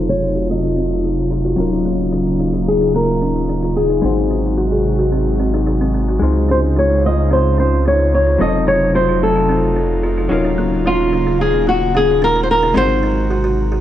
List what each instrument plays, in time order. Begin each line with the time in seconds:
Already playing: analog synth bass F1, hollow-body jazz guitar C3 F#3 D#4 A4 F5, analog synth pad C3 F#3 A3 D#4 F4
0.09 nylon-string guitar C#5
0.22 kalimba F4
0.35 kalimba F#4
0.50 nylon-string guitar D#5
0.63 kalimba F4
0.76 kalimba C4
1.04 kalimba D#4
1.31 kalimba F4
1.45 kalimba F#4
1.56 analog synth bass D#1, analog synth pad C#3 A#3, hollow-body jazz guitar F#3 C#4 D#4 F4 A#4
1.72 kalimba D#4
1.85 kalimba A#3
2.12 kalimba C#4
2.40 kalimba D#4
2.54 kalimba F4
2.68 nylon-string guitar G#4
2.81 kalimba D#4
2.94 kalimba A#3, nylon-string guitar A#4
3.22 kalimba C#4
3.49 kalimba D#4
3.63 kalimba F4
3.76 nylon-string guitar G#4
3.90 kalimba D#4
4.02 analog synth bass G#1, analog synth pad C3 G#3 F#4, hollow-body jazz guitar G#3 C4 D#4 F#4 C5, kalimba C4
4.30 kalimba D#4
4.57 kalimba F#4
4.72 kalimba G#4
4.99 kalimba F#4
5.12 kalimba C4
5.40 kalimba C4
5.54 kalimba D#4
5.67 kalimba D#4
5.81 kalimba C4
5.94 kalimba C4
6.08 kalimba F#4
6.19 analog synth bass C#2, analog synth pad C#3 D#4 F4 C5, hollow-body jazz guitar G#3 D#4 F4, kalimba C4
6.23 hollow-body jazz guitar C5
6.49 kalimba C#4, nylon-string guitar C5
6.76 kalimba D#4, nylon-string guitar C#5
6.90 kalimba D#4
7.06 nylon-string guitar D#5
7.17 kalimba D#4
7.31 kalimba C4, nylon-string guitar C5
7.58 kalimba C#4, nylon-string guitar C5
7.85 kalimba D#4, nylon-string guitar C#5
7.99 kalimba D#4
8.14 nylon-string guitar C#5
8.26 kalimba D#4
8.38 analog synth bass F1, analog synth pad C3 F#3 A3 F4, hollow-body jazz guitar F#3 C4 D#4 F4 A4, kalimba C4, nylon-string guitar D#5
8.67 kalimba D#4, nylon-string guitar C#5
8.94 kalimba F4, nylon-string guitar C5
9.08 kalimba F4
9.23 nylon-string guitar A4
9.36 kalimba F4
9.49 kalimba C4
9.76 kalimba D#4
10.03 kalimba F4
10.18 kalimba F4
10.29 analog synth bass D#1, analog synth pad C#3 A#3, hollow-body jazz guitar F#3 C#4 D#4 F4 A#4
10.44 kalimba D#4
10.58 kalimba A#3
10.86 kalimba C#4, nylon-string guitar F4
11.13 kalimba D#4
11.26 kalimba D#4
11.41 nylon-string guitar G#4
11.54 kalimba D#4
11.67 kalimba A#3, nylon-string guitar F#4
11.95 kalimba C#4, nylon-string guitar G#4
12.22 kalimba D#4, nylon-string guitar A#4
12.36 kalimba D#4
12.43 nylon-string guitar C5
12.51 nylon-string guitar A#4
12.63 kalimba D#4
12.74 analog synth bass G#1, analog synth pad C3 G#3 F#4, hollow-body jazz guitar G#3 C4 D#4 F#4 C5, kalimba C4, nylon-string guitar C5
13.03 kalimba D#4
13.30 kalimba F#4
13.44 kalimba F#4
13.72 kalimba F#4